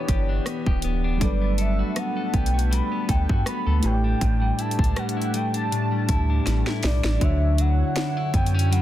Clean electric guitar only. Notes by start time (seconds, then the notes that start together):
Already playing: E3 B3 D4
0.09 G4
0.29 D4
0.47 B3
0.67 G4
0.84 B3
1.04 D4
1.21 G3
1.42 B3
1.59 A4
1.79 F#4
1.96 B3
2.17 A4
2.34 B3
2.54 F#4
2.71 G3
2.92 B3
3.09 A4
3.29 F#4
3.46 B3
3.67 A4
3.84 A2
4.04 D4
4.21 A2
4.41 G3
4.59 E4
4.79 D4
4.97 G3
5.17 E4
5.34 G3
5.54 D4
5.72 A2
5.92 G3
6.09 E4
6.30 D4
6.46 G3
6.67 E4
6.84 G3
7.04 D4
7.21 D3
7.59 F#3
7.96 D4
8.17 E4
8.34 B3
8.54 C#4
8.71 F#3